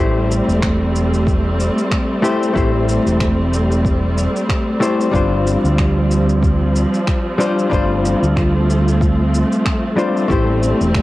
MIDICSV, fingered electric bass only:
0, 0, Header, 1, 2, 480
1, 0, Start_track
1, 0, Key_signature, 0, "minor"
1, 0, Tempo, 645161
1, 1904, Time_signature, 4, 2, 24, 8
1, 8200, End_track
2, 0, Start_track
2, 0, Title_t, "Fingered electric bass"
2, 0, Program_c, 0, 33
2, 0, Note_on_c, 0, 33, 94
2, 292, Note_off_c, 0, 33, 0
2, 357, Note_on_c, 0, 28, 87
2, 1252, Note_off_c, 0, 28, 0
2, 1903, Note_on_c, 0, 33, 94
2, 2212, Note_off_c, 0, 33, 0
2, 2277, Note_on_c, 0, 28, 85
2, 3172, Note_off_c, 0, 28, 0
2, 3820, Note_on_c, 0, 31, 98
2, 4131, Note_off_c, 0, 31, 0
2, 4195, Note_on_c, 0, 38, 88
2, 5091, Note_off_c, 0, 38, 0
2, 5742, Note_on_c, 0, 31, 94
2, 6052, Note_off_c, 0, 31, 0
2, 6120, Note_on_c, 0, 38, 89
2, 7013, Note_off_c, 0, 38, 0
2, 7663, Note_on_c, 0, 33, 100
2, 7972, Note_off_c, 0, 33, 0
2, 8040, Note_on_c, 0, 28, 89
2, 8200, Note_off_c, 0, 28, 0
2, 8200, End_track
0, 0, End_of_file